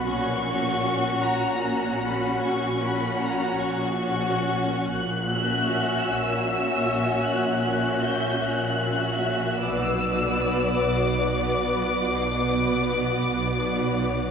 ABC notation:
X:1
M:12/8
L:1/8
Q:3/8=51
K:F#phr
V:1 name="Violin section"
c'3 ^a2 b c' b a c'3 | f'3 e'3 f' f' g' f'3 | e'3 d'8- d' |]
V:2 name="Violin section"
[Ff] [Ff]3 [Ff]3 [Ff]3 [Ff]2 | z [Fe]3 [Fe]3 [Fe]3 [Fe]2 | [Bd] [Bd]3 [Bd]3 [Bd]3 [Bd]2 |]
V:3 name="Viola section"
[CF] [CF]3 [CF]3 [CF]3 [CF]2 | z [CF]3 [CF]3 [CF]3 [CF]2 | [B,F] [B,F]3 [B,F]3 [B,F]3 [B,F]2 |]
V:4 name="Cello section" clef=bass
^A,,3 A,,3 A,,3 A,,3 | ^A,,3 A,,3 A,,3 A,,3 | B,,3 B,,3 B,,3 B,,3 |]
V:5 name="Double bass section" clef=bass
^A,,,3 A,,,3 A,,,3 A,,,3 | ^A,,,3 A,,,3 A,,,3 A,,,3 | B,,,3 B,,,3 B,,,3 B,,,3 |]